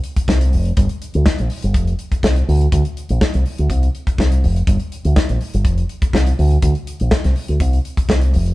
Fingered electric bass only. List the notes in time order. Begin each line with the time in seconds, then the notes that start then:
0.28 C2
0.53 F1
0.78 G1
1.15 D2
1.40 A#1
1.64 G1
1.75 F1
2.24 C2
2.48 D2
2.73 D2
3.10 A#1
3.35 C2
3.59 D2
3.70 C2
4.19 C2
4.44 F1
4.67 G1
5.05 D2
5.30 A#1
5.54 G1
5.65 F1
6.14 C2
6.39 D2
6.63 D2
7.01 A#1
7.25 C2
7.49 D2
7.61 C2
8.09 C2
8.34 F1